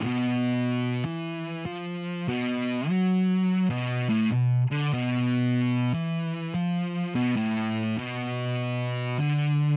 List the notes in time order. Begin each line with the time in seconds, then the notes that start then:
0.03 B2
1.05 E3
1.66 F3
2.28 B2
2.89 F#3
3.70 B2
4.09 A2
4.32 B2
4.71 D3
4.93 B2
5.94 E3
6.54 F3
7.16 B2
7.37 A2
7.98 B2
9.20 D3